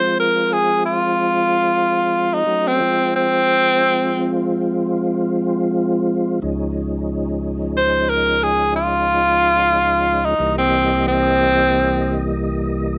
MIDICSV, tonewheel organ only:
0, 0, Header, 1, 2, 480
1, 0, Start_track
1, 0, Key_signature, -4, "minor"
1, 0, Tempo, 658400
1, 1811, Time_signature, 12, 3, 24, 8
1, 9463, End_track
2, 0, Start_track
2, 0, Title_t, "Tonewheel organ"
2, 0, Program_c, 0, 16
2, 0, Note_on_c, 0, 53, 68
2, 0, Note_on_c, 0, 56, 73
2, 0, Note_on_c, 0, 60, 67
2, 0, Note_on_c, 0, 65, 72
2, 1778, Note_off_c, 0, 53, 0
2, 1778, Note_off_c, 0, 56, 0
2, 1780, Note_off_c, 0, 60, 0
2, 1780, Note_off_c, 0, 65, 0
2, 1795, Note_on_c, 0, 54, 65
2, 1795, Note_on_c, 0, 57, 57
2, 1797, Note_on_c, 0, 66, 61
2, 1799, Note_on_c, 0, 61, 63
2, 2043, Note_off_c, 0, 54, 0
2, 2043, Note_off_c, 0, 57, 0
2, 2044, Note_off_c, 0, 66, 0
2, 2045, Note_off_c, 0, 61, 0
2, 2045, Note_on_c, 0, 60, 63
2, 2048, Note_on_c, 0, 53, 68
2, 2048, Note_on_c, 0, 56, 59
2, 2048, Note_on_c, 0, 65, 67
2, 4662, Note_off_c, 0, 60, 0
2, 4663, Note_off_c, 0, 53, 0
2, 4663, Note_off_c, 0, 56, 0
2, 4663, Note_off_c, 0, 65, 0
2, 4679, Note_on_c, 0, 56, 67
2, 4683, Note_on_c, 0, 61, 68
2, 4683, Note_on_c, 0, 63, 59
2, 4685, Note_on_c, 0, 37, 64
2, 4685, Note_on_c, 0, 53, 68
2, 7538, Note_off_c, 0, 56, 0
2, 7539, Note_off_c, 0, 61, 0
2, 7539, Note_off_c, 0, 63, 0
2, 7541, Note_off_c, 0, 37, 0
2, 7541, Note_off_c, 0, 53, 0
2, 7571, Note_on_c, 0, 55, 70
2, 7572, Note_on_c, 0, 75, 64
2, 7574, Note_on_c, 0, 36, 65
2, 7576, Note_on_c, 0, 52, 68
2, 7577, Note_on_c, 0, 58, 68
2, 9463, Note_off_c, 0, 36, 0
2, 9463, Note_off_c, 0, 52, 0
2, 9463, Note_off_c, 0, 55, 0
2, 9463, Note_off_c, 0, 58, 0
2, 9463, Note_off_c, 0, 75, 0
2, 9463, End_track
0, 0, End_of_file